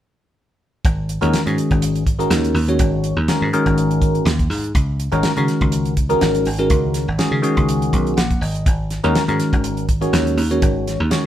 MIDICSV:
0, 0, Header, 1, 5, 480
1, 0, Start_track
1, 0, Tempo, 488998
1, 831, Time_signature, 4, 2, 24, 8
1, 11053, End_track
2, 0, Start_track
2, 0, Title_t, "Tine electric piano"
2, 0, Program_c, 0, 4
2, 1189, Note_on_c, 0, 61, 83
2, 1190, Note_on_c, 0, 51, 84
2, 1192, Note_on_c, 0, 56, 87
2, 1194, Note_on_c, 0, 70, 99
2, 1195, Note_on_c, 0, 66, 84
2, 1376, Note_off_c, 0, 51, 0
2, 1376, Note_off_c, 0, 61, 0
2, 1377, Note_off_c, 0, 56, 0
2, 1378, Note_off_c, 0, 70, 0
2, 1379, Note_off_c, 0, 66, 0
2, 1432, Note_on_c, 0, 56, 70
2, 1434, Note_on_c, 0, 51, 64
2, 1434, Note_on_c, 0, 61, 68
2, 1437, Note_on_c, 0, 68, 76
2, 1440, Note_on_c, 0, 66, 65
2, 1986, Note_off_c, 0, 56, 0
2, 1987, Note_off_c, 0, 51, 0
2, 1987, Note_off_c, 0, 61, 0
2, 1988, Note_off_c, 0, 68, 0
2, 1990, Note_off_c, 0, 66, 0
2, 2148, Note_on_c, 0, 51, 81
2, 2152, Note_on_c, 0, 56, 73
2, 2154, Note_on_c, 0, 66, 75
2, 2155, Note_on_c, 0, 61, 68
2, 2157, Note_on_c, 0, 70, 88
2, 2515, Note_off_c, 0, 51, 0
2, 2518, Note_off_c, 0, 56, 0
2, 2518, Note_off_c, 0, 66, 0
2, 2519, Note_off_c, 0, 61, 0
2, 2520, Note_off_c, 0, 70, 0
2, 2630, Note_on_c, 0, 51, 65
2, 2633, Note_on_c, 0, 61, 68
2, 2634, Note_on_c, 0, 56, 68
2, 2636, Note_on_c, 0, 66, 69
2, 2638, Note_on_c, 0, 73, 80
2, 3096, Note_off_c, 0, 51, 0
2, 3097, Note_off_c, 0, 61, 0
2, 3098, Note_off_c, 0, 56, 0
2, 3099, Note_off_c, 0, 66, 0
2, 3100, Note_off_c, 0, 73, 0
2, 3222, Note_on_c, 0, 51, 78
2, 3223, Note_on_c, 0, 56, 70
2, 3227, Note_on_c, 0, 66, 67
2, 3229, Note_on_c, 0, 61, 78
2, 3231, Note_on_c, 0, 70, 82
2, 3414, Note_off_c, 0, 51, 0
2, 3415, Note_off_c, 0, 56, 0
2, 3417, Note_off_c, 0, 66, 0
2, 3418, Note_off_c, 0, 61, 0
2, 3419, Note_off_c, 0, 70, 0
2, 3465, Note_on_c, 0, 56, 88
2, 3468, Note_on_c, 0, 51, 97
2, 3469, Note_on_c, 0, 61, 87
2, 3470, Note_on_c, 0, 66, 81
2, 3471, Note_on_c, 0, 70, 103
2, 4210, Note_off_c, 0, 56, 0
2, 4211, Note_off_c, 0, 51, 0
2, 4211, Note_off_c, 0, 61, 0
2, 4212, Note_off_c, 0, 66, 0
2, 4213, Note_off_c, 0, 70, 0
2, 5021, Note_on_c, 0, 51, 90
2, 5024, Note_on_c, 0, 61, 88
2, 5025, Note_on_c, 0, 56, 82
2, 5027, Note_on_c, 0, 66, 87
2, 5028, Note_on_c, 0, 70, 102
2, 5209, Note_off_c, 0, 51, 0
2, 5210, Note_off_c, 0, 61, 0
2, 5211, Note_off_c, 0, 56, 0
2, 5212, Note_off_c, 0, 66, 0
2, 5212, Note_off_c, 0, 70, 0
2, 5264, Note_on_c, 0, 51, 71
2, 5264, Note_on_c, 0, 56, 63
2, 5267, Note_on_c, 0, 61, 64
2, 5268, Note_on_c, 0, 66, 71
2, 5270, Note_on_c, 0, 70, 77
2, 5819, Note_off_c, 0, 56, 0
2, 5820, Note_off_c, 0, 51, 0
2, 5821, Note_off_c, 0, 61, 0
2, 5822, Note_off_c, 0, 66, 0
2, 5823, Note_off_c, 0, 70, 0
2, 5983, Note_on_c, 0, 56, 76
2, 5984, Note_on_c, 0, 51, 91
2, 5985, Note_on_c, 0, 70, 93
2, 5987, Note_on_c, 0, 61, 72
2, 5988, Note_on_c, 0, 66, 71
2, 6351, Note_off_c, 0, 51, 0
2, 6351, Note_off_c, 0, 56, 0
2, 6352, Note_off_c, 0, 70, 0
2, 6353, Note_off_c, 0, 61, 0
2, 6353, Note_off_c, 0, 66, 0
2, 6464, Note_on_c, 0, 51, 67
2, 6465, Note_on_c, 0, 61, 64
2, 6466, Note_on_c, 0, 56, 74
2, 6470, Note_on_c, 0, 66, 71
2, 6471, Note_on_c, 0, 70, 81
2, 6932, Note_off_c, 0, 51, 0
2, 6932, Note_off_c, 0, 61, 0
2, 6933, Note_off_c, 0, 56, 0
2, 6935, Note_off_c, 0, 66, 0
2, 6935, Note_off_c, 0, 70, 0
2, 7053, Note_on_c, 0, 51, 81
2, 7058, Note_on_c, 0, 56, 69
2, 7058, Note_on_c, 0, 66, 74
2, 7058, Note_on_c, 0, 68, 90
2, 7059, Note_on_c, 0, 61, 69
2, 7248, Note_off_c, 0, 51, 0
2, 7251, Note_off_c, 0, 56, 0
2, 7251, Note_off_c, 0, 61, 0
2, 7251, Note_off_c, 0, 66, 0
2, 7251, Note_off_c, 0, 68, 0
2, 7286, Note_on_c, 0, 51, 91
2, 7288, Note_on_c, 0, 56, 74
2, 7292, Note_on_c, 0, 61, 82
2, 7294, Note_on_c, 0, 66, 88
2, 7296, Note_on_c, 0, 68, 100
2, 8020, Note_on_c, 0, 78, 71
2, 8040, Note_off_c, 0, 51, 0
2, 8041, Note_off_c, 0, 56, 0
2, 8043, Note_off_c, 0, 61, 0
2, 8044, Note_off_c, 0, 66, 0
2, 8045, Note_off_c, 0, 68, 0
2, 8245, Note_off_c, 0, 78, 0
2, 8258, Note_on_c, 0, 75, 58
2, 8484, Note_off_c, 0, 75, 0
2, 8868, Note_on_c, 0, 51, 88
2, 8870, Note_on_c, 0, 56, 88
2, 8872, Note_on_c, 0, 61, 90
2, 8873, Note_on_c, 0, 70, 108
2, 8875, Note_on_c, 0, 66, 85
2, 9053, Note_off_c, 0, 51, 0
2, 9054, Note_off_c, 0, 56, 0
2, 9055, Note_off_c, 0, 61, 0
2, 9055, Note_off_c, 0, 70, 0
2, 9056, Note_off_c, 0, 66, 0
2, 9106, Note_on_c, 0, 51, 71
2, 9108, Note_on_c, 0, 56, 64
2, 9109, Note_on_c, 0, 61, 65
2, 9112, Note_on_c, 0, 70, 89
2, 9114, Note_on_c, 0, 66, 60
2, 9662, Note_off_c, 0, 51, 0
2, 9663, Note_off_c, 0, 56, 0
2, 9664, Note_off_c, 0, 61, 0
2, 9666, Note_off_c, 0, 66, 0
2, 9666, Note_off_c, 0, 70, 0
2, 9827, Note_on_c, 0, 51, 82
2, 9829, Note_on_c, 0, 56, 74
2, 9829, Note_on_c, 0, 61, 77
2, 9832, Note_on_c, 0, 66, 77
2, 9832, Note_on_c, 0, 73, 90
2, 10195, Note_off_c, 0, 51, 0
2, 10196, Note_off_c, 0, 56, 0
2, 10196, Note_off_c, 0, 61, 0
2, 10198, Note_off_c, 0, 66, 0
2, 10198, Note_off_c, 0, 73, 0
2, 10312, Note_on_c, 0, 51, 74
2, 10316, Note_on_c, 0, 56, 66
2, 10317, Note_on_c, 0, 61, 66
2, 10317, Note_on_c, 0, 73, 83
2, 10319, Note_on_c, 0, 66, 71
2, 10778, Note_off_c, 0, 51, 0
2, 10780, Note_off_c, 0, 56, 0
2, 10781, Note_off_c, 0, 61, 0
2, 10781, Note_off_c, 0, 73, 0
2, 10782, Note_off_c, 0, 66, 0
2, 10901, Note_on_c, 0, 56, 72
2, 10902, Note_on_c, 0, 51, 73
2, 10904, Note_on_c, 0, 61, 68
2, 10909, Note_on_c, 0, 66, 67
2, 10911, Note_on_c, 0, 73, 76
2, 11053, Note_off_c, 0, 51, 0
2, 11053, Note_off_c, 0, 56, 0
2, 11053, Note_off_c, 0, 61, 0
2, 11053, Note_off_c, 0, 66, 0
2, 11053, Note_off_c, 0, 73, 0
2, 11053, End_track
3, 0, Start_track
3, 0, Title_t, "Slap bass"
3, 0, Program_c, 1, 36
3, 834, Note_on_c, 1, 32, 95
3, 1154, Note_off_c, 1, 32, 0
3, 1200, Note_on_c, 1, 39, 67
3, 1296, Note_off_c, 1, 39, 0
3, 1437, Note_on_c, 1, 44, 67
3, 1534, Note_off_c, 1, 44, 0
3, 1678, Note_on_c, 1, 32, 79
3, 2192, Note_off_c, 1, 32, 0
3, 2260, Note_on_c, 1, 39, 95
3, 2473, Note_off_c, 1, 39, 0
3, 2497, Note_on_c, 1, 39, 95
3, 2711, Note_off_c, 1, 39, 0
3, 2743, Note_on_c, 1, 32, 101
3, 3067, Note_off_c, 1, 32, 0
3, 3107, Note_on_c, 1, 39, 80
3, 3207, Note_off_c, 1, 39, 0
3, 3354, Note_on_c, 1, 44, 73
3, 3451, Note_off_c, 1, 44, 0
3, 3593, Note_on_c, 1, 32, 77
3, 4108, Note_off_c, 1, 32, 0
3, 4175, Note_on_c, 1, 39, 96
3, 4388, Note_off_c, 1, 39, 0
3, 4416, Note_on_c, 1, 44, 90
3, 4629, Note_off_c, 1, 44, 0
3, 4660, Note_on_c, 1, 37, 97
3, 4984, Note_off_c, 1, 37, 0
3, 5026, Note_on_c, 1, 32, 76
3, 5126, Note_off_c, 1, 32, 0
3, 5271, Note_on_c, 1, 49, 73
3, 5369, Note_off_c, 1, 49, 0
3, 5510, Note_on_c, 1, 37, 86
3, 6026, Note_off_c, 1, 37, 0
3, 6103, Note_on_c, 1, 32, 96
3, 6312, Note_off_c, 1, 32, 0
3, 6346, Note_on_c, 1, 32, 88
3, 6554, Note_off_c, 1, 32, 0
3, 6579, Note_on_c, 1, 37, 89
3, 6903, Note_off_c, 1, 37, 0
3, 6949, Note_on_c, 1, 32, 72
3, 7047, Note_off_c, 1, 32, 0
3, 7179, Note_on_c, 1, 49, 76
3, 7282, Note_off_c, 1, 49, 0
3, 7429, Note_on_c, 1, 37, 86
3, 7736, Note_off_c, 1, 37, 0
3, 7783, Note_on_c, 1, 35, 69
3, 7999, Note_off_c, 1, 35, 0
3, 8022, Note_on_c, 1, 34, 78
3, 8239, Note_off_c, 1, 34, 0
3, 8257, Note_on_c, 1, 32, 76
3, 8476, Note_off_c, 1, 32, 0
3, 8505, Note_on_c, 1, 32, 101
3, 8827, Note_off_c, 1, 32, 0
3, 8875, Note_on_c, 1, 39, 78
3, 8971, Note_off_c, 1, 39, 0
3, 9113, Note_on_c, 1, 44, 68
3, 9210, Note_off_c, 1, 44, 0
3, 9355, Note_on_c, 1, 32, 83
3, 9870, Note_off_c, 1, 32, 0
3, 9943, Note_on_c, 1, 39, 90
3, 10154, Note_off_c, 1, 39, 0
3, 10182, Note_on_c, 1, 39, 86
3, 10394, Note_off_c, 1, 39, 0
3, 10426, Note_on_c, 1, 32, 91
3, 10749, Note_off_c, 1, 32, 0
3, 10797, Note_on_c, 1, 39, 76
3, 10894, Note_off_c, 1, 39, 0
3, 11053, End_track
4, 0, Start_track
4, 0, Title_t, "Muted slap bass strokes"
4, 1311, Note_on_c, 9, 29, 35
4, 1409, Note_off_c, 9, 29, 0
4, 3222, Note_on_c, 9, 29, 32
4, 3320, Note_off_c, 9, 29, 0
4, 5146, Note_on_c, 9, 29, 35
4, 5244, Note_off_c, 9, 29, 0
4, 7064, Note_on_c, 9, 29, 33
4, 7162, Note_off_c, 9, 29, 0
4, 8984, Note_on_c, 9, 29, 32
4, 9082, Note_off_c, 9, 29, 0
4, 10911, Note_on_c, 9, 29, 35
4, 11009, Note_off_c, 9, 29, 0
4, 11053, End_track
5, 0, Start_track
5, 0, Title_t, "Drums"
5, 831, Note_on_c, 9, 36, 105
5, 832, Note_on_c, 9, 42, 78
5, 929, Note_off_c, 9, 36, 0
5, 930, Note_off_c, 9, 42, 0
5, 1071, Note_on_c, 9, 42, 53
5, 1169, Note_off_c, 9, 42, 0
5, 1201, Note_on_c, 9, 42, 34
5, 1299, Note_off_c, 9, 42, 0
5, 1310, Note_on_c, 9, 42, 82
5, 1313, Note_on_c, 9, 38, 98
5, 1408, Note_off_c, 9, 42, 0
5, 1411, Note_off_c, 9, 38, 0
5, 1440, Note_on_c, 9, 42, 40
5, 1538, Note_off_c, 9, 42, 0
5, 1552, Note_on_c, 9, 42, 52
5, 1650, Note_off_c, 9, 42, 0
5, 1676, Note_on_c, 9, 42, 35
5, 1677, Note_on_c, 9, 36, 77
5, 1774, Note_off_c, 9, 42, 0
5, 1775, Note_off_c, 9, 36, 0
5, 1788, Note_on_c, 9, 42, 84
5, 1886, Note_off_c, 9, 42, 0
5, 1918, Note_on_c, 9, 42, 42
5, 2016, Note_off_c, 9, 42, 0
5, 2027, Note_on_c, 9, 36, 81
5, 2029, Note_on_c, 9, 42, 67
5, 2125, Note_off_c, 9, 36, 0
5, 2127, Note_off_c, 9, 42, 0
5, 2162, Note_on_c, 9, 42, 39
5, 2261, Note_off_c, 9, 42, 0
5, 2266, Note_on_c, 9, 42, 96
5, 2269, Note_on_c, 9, 38, 115
5, 2364, Note_off_c, 9, 42, 0
5, 2367, Note_off_c, 9, 38, 0
5, 2399, Note_on_c, 9, 42, 39
5, 2497, Note_off_c, 9, 42, 0
5, 2508, Note_on_c, 9, 46, 70
5, 2606, Note_off_c, 9, 46, 0
5, 2636, Note_on_c, 9, 42, 30
5, 2734, Note_off_c, 9, 42, 0
5, 2740, Note_on_c, 9, 42, 89
5, 2744, Note_on_c, 9, 36, 118
5, 2838, Note_off_c, 9, 42, 0
5, 2842, Note_off_c, 9, 36, 0
5, 2981, Note_on_c, 9, 42, 57
5, 3079, Note_off_c, 9, 42, 0
5, 3222, Note_on_c, 9, 42, 77
5, 3224, Note_on_c, 9, 38, 104
5, 3320, Note_off_c, 9, 42, 0
5, 3323, Note_off_c, 9, 38, 0
5, 3469, Note_on_c, 9, 42, 53
5, 3567, Note_off_c, 9, 42, 0
5, 3594, Note_on_c, 9, 36, 69
5, 3594, Note_on_c, 9, 42, 31
5, 3692, Note_off_c, 9, 36, 0
5, 3692, Note_off_c, 9, 42, 0
5, 3707, Note_on_c, 9, 42, 72
5, 3805, Note_off_c, 9, 42, 0
5, 3835, Note_on_c, 9, 42, 35
5, 3933, Note_off_c, 9, 42, 0
5, 3942, Note_on_c, 9, 36, 81
5, 3944, Note_on_c, 9, 42, 61
5, 4040, Note_off_c, 9, 36, 0
5, 4043, Note_off_c, 9, 42, 0
5, 4072, Note_on_c, 9, 42, 33
5, 4170, Note_off_c, 9, 42, 0
5, 4185, Note_on_c, 9, 42, 74
5, 4188, Note_on_c, 9, 38, 104
5, 4283, Note_off_c, 9, 42, 0
5, 4286, Note_off_c, 9, 38, 0
5, 4312, Note_on_c, 9, 36, 74
5, 4314, Note_on_c, 9, 42, 36
5, 4411, Note_off_c, 9, 36, 0
5, 4412, Note_off_c, 9, 42, 0
5, 4427, Note_on_c, 9, 46, 73
5, 4430, Note_on_c, 9, 38, 29
5, 4525, Note_off_c, 9, 46, 0
5, 4528, Note_off_c, 9, 38, 0
5, 4554, Note_on_c, 9, 42, 35
5, 4652, Note_off_c, 9, 42, 0
5, 4662, Note_on_c, 9, 36, 101
5, 4662, Note_on_c, 9, 42, 78
5, 4760, Note_off_c, 9, 36, 0
5, 4760, Note_off_c, 9, 42, 0
5, 4904, Note_on_c, 9, 42, 60
5, 5002, Note_off_c, 9, 42, 0
5, 5029, Note_on_c, 9, 42, 31
5, 5127, Note_off_c, 9, 42, 0
5, 5135, Note_on_c, 9, 42, 77
5, 5138, Note_on_c, 9, 38, 108
5, 5233, Note_off_c, 9, 42, 0
5, 5236, Note_off_c, 9, 38, 0
5, 5267, Note_on_c, 9, 42, 35
5, 5366, Note_off_c, 9, 42, 0
5, 5380, Note_on_c, 9, 42, 51
5, 5383, Note_on_c, 9, 38, 29
5, 5479, Note_off_c, 9, 42, 0
5, 5481, Note_off_c, 9, 38, 0
5, 5506, Note_on_c, 9, 42, 31
5, 5508, Note_on_c, 9, 36, 75
5, 5604, Note_off_c, 9, 42, 0
5, 5607, Note_off_c, 9, 36, 0
5, 5615, Note_on_c, 9, 42, 77
5, 5713, Note_off_c, 9, 42, 0
5, 5747, Note_on_c, 9, 42, 41
5, 5845, Note_off_c, 9, 42, 0
5, 5859, Note_on_c, 9, 42, 64
5, 5860, Note_on_c, 9, 36, 76
5, 5957, Note_off_c, 9, 42, 0
5, 5958, Note_off_c, 9, 36, 0
5, 5986, Note_on_c, 9, 42, 37
5, 6084, Note_off_c, 9, 42, 0
5, 6097, Note_on_c, 9, 42, 89
5, 6100, Note_on_c, 9, 38, 98
5, 6196, Note_off_c, 9, 42, 0
5, 6199, Note_off_c, 9, 38, 0
5, 6229, Note_on_c, 9, 42, 41
5, 6327, Note_off_c, 9, 42, 0
5, 6334, Note_on_c, 9, 46, 64
5, 6433, Note_off_c, 9, 46, 0
5, 6464, Note_on_c, 9, 42, 31
5, 6562, Note_off_c, 9, 42, 0
5, 6576, Note_on_c, 9, 42, 84
5, 6579, Note_on_c, 9, 36, 114
5, 6674, Note_off_c, 9, 42, 0
5, 6677, Note_off_c, 9, 36, 0
5, 6814, Note_on_c, 9, 42, 61
5, 6817, Note_on_c, 9, 38, 28
5, 6912, Note_off_c, 9, 42, 0
5, 6915, Note_off_c, 9, 38, 0
5, 7055, Note_on_c, 9, 42, 69
5, 7058, Note_on_c, 9, 38, 100
5, 7153, Note_off_c, 9, 42, 0
5, 7156, Note_off_c, 9, 38, 0
5, 7299, Note_on_c, 9, 42, 53
5, 7397, Note_off_c, 9, 42, 0
5, 7431, Note_on_c, 9, 36, 65
5, 7432, Note_on_c, 9, 42, 32
5, 7529, Note_off_c, 9, 36, 0
5, 7530, Note_off_c, 9, 42, 0
5, 7544, Note_on_c, 9, 42, 77
5, 7642, Note_off_c, 9, 42, 0
5, 7676, Note_on_c, 9, 42, 38
5, 7775, Note_off_c, 9, 42, 0
5, 7784, Note_on_c, 9, 36, 70
5, 7786, Note_on_c, 9, 42, 60
5, 7882, Note_off_c, 9, 36, 0
5, 7884, Note_off_c, 9, 42, 0
5, 7918, Note_on_c, 9, 42, 32
5, 8016, Note_off_c, 9, 42, 0
5, 8024, Note_on_c, 9, 42, 77
5, 8027, Note_on_c, 9, 38, 107
5, 8123, Note_off_c, 9, 42, 0
5, 8126, Note_off_c, 9, 38, 0
5, 8153, Note_on_c, 9, 36, 71
5, 8153, Note_on_c, 9, 42, 34
5, 8251, Note_off_c, 9, 36, 0
5, 8252, Note_off_c, 9, 42, 0
5, 8269, Note_on_c, 9, 46, 68
5, 8367, Note_off_c, 9, 46, 0
5, 8394, Note_on_c, 9, 42, 31
5, 8493, Note_off_c, 9, 42, 0
5, 8503, Note_on_c, 9, 36, 109
5, 8504, Note_on_c, 9, 42, 82
5, 8601, Note_off_c, 9, 36, 0
5, 8602, Note_off_c, 9, 42, 0
5, 8740, Note_on_c, 9, 42, 51
5, 8743, Note_on_c, 9, 38, 30
5, 8839, Note_off_c, 9, 42, 0
5, 8842, Note_off_c, 9, 38, 0
5, 8871, Note_on_c, 9, 42, 30
5, 8969, Note_off_c, 9, 42, 0
5, 8985, Note_on_c, 9, 42, 72
5, 8988, Note_on_c, 9, 38, 103
5, 9083, Note_off_c, 9, 42, 0
5, 9086, Note_off_c, 9, 38, 0
5, 9115, Note_on_c, 9, 42, 37
5, 9213, Note_off_c, 9, 42, 0
5, 9223, Note_on_c, 9, 42, 51
5, 9225, Note_on_c, 9, 38, 29
5, 9321, Note_off_c, 9, 42, 0
5, 9324, Note_off_c, 9, 38, 0
5, 9352, Note_on_c, 9, 36, 76
5, 9353, Note_on_c, 9, 42, 35
5, 9451, Note_off_c, 9, 36, 0
5, 9451, Note_off_c, 9, 42, 0
5, 9462, Note_on_c, 9, 42, 77
5, 9560, Note_off_c, 9, 42, 0
5, 9591, Note_on_c, 9, 42, 38
5, 9690, Note_off_c, 9, 42, 0
5, 9704, Note_on_c, 9, 42, 58
5, 9705, Note_on_c, 9, 36, 80
5, 9802, Note_off_c, 9, 42, 0
5, 9803, Note_off_c, 9, 36, 0
5, 9837, Note_on_c, 9, 42, 38
5, 9935, Note_off_c, 9, 42, 0
5, 9948, Note_on_c, 9, 42, 83
5, 9951, Note_on_c, 9, 38, 113
5, 10046, Note_off_c, 9, 42, 0
5, 10049, Note_off_c, 9, 38, 0
5, 10079, Note_on_c, 9, 42, 35
5, 10177, Note_off_c, 9, 42, 0
5, 10187, Note_on_c, 9, 46, 69
5, 10285, Note_off_c, 9, 46, 0
5, 10318, Note_on_c, 9, 42, 37
5, 10417, Note_off_c, 9, 42, 0
5, 10425, Note_on_c, 9, 42, 83
5, 10428, Note_on_c, 9, 36, 108
5, 10524, Note_off_c, 9, 42, 0
5, 10526, Note_off_c, 9, 36, 0
5, 10675, Note_on_c, 9, 42, 60
5, 10678, Note_on_c, 9, 38, 33
5, 10773, Note_off_c, 9, 42, 0
5, 10776, Note_off_c, 9, 38, 0
5, 10906, Note_on_c, 9, 42, 83
5, 10909, Note_on_c, 9, 38, 99
5, 11004, Note_off_c, 9, 42, 0
5, 11007, Note_off_c, 9, 38, 0
5, 11053, End_track
0, 0, End_of_file